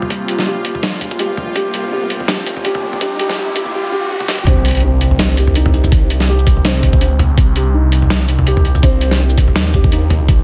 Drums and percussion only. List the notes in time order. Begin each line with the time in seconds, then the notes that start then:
0.02 mid tom
0.10 kick, closed hi-hat
0.28 closed hi-hat
0.39 snare
0.65 kick, closed hi-hat
0.75 mid tom
0.83 snare, closed hi-hat
1.01 kick, closed hi-hat, mid tom
1.11 kick
1.19 closed hi-hat
1.37 mid tom
1.56 kick, closed hi-hat
1.74 closed hi-hat
2.10 closed hi-hat
2.20 mid tom
2.28 snare, closed hi-hat
2.46 closed hi-hat
2.57 mid tom
2.65 closed hi-hat
2.75 mid tom
2.93 mid tom
3.01 kick, closed hi-hat
3.19 closed hi-hat
3.29 snare
3.56 kick, closed hi-hat
3.66 mid tom
4.20 high tom
4.28 snare
4.39 mid tom
4.47 kick, closed hi-hat
4.65 closed hi-hat
4.68 closed hi-hat
4.71 closed hi-hat
4.75 closed hi-hat
4.77 closed hi-hat
4.80 closed hi-hat
5.01 closed hi-hat
5.11 mid tom
5.19 snare, closed hi-hat
5.37 closed hi-hat
5.47 mid tom
5.55 closed hi-hat
5.66 mid tom
5.74 closed hi-hat
5.84 mid tom, shaker
5.92 kick, closed hi-hat
6.10 closed hi-hat
6.20 snare
6.39 shaker
6.47 kick, closed hi-hat, shaker
6.57 mid tom
6.65 snare, closed hi-hat
6.83 kick, closed hi-hat, mid tom
6.93 kick
7.01 closed hi-hat
7.19 closed hi-hat, mid tom, shaker
7.38 kick, closed hi-hat
7.56 closed hi-hat
7.92 closed hi-hat
8.02 mid tom
8.10 snare, closed hi-hat
8.29 closed hi-hat
8.39 mid tom
8.47 closed hi-hat
8.57 mid tom
8.65 closed hi-hat
8.75 mid tom, shaker
8.83 kick, closed hi-hat
9.01 closed hi-hat
9.11 snare
9.30 shaker
9.38 kick, closed hi-hat, shaker
9.48 mid tom
9.56 snare, closed hi-hat
9.74 kick, closed hi-hat, mid tom
9.84 kick
9.92 closed hi-hat
10.10 closed hi-hat, mid tom, shaker
10.28 kick, closed hi-hat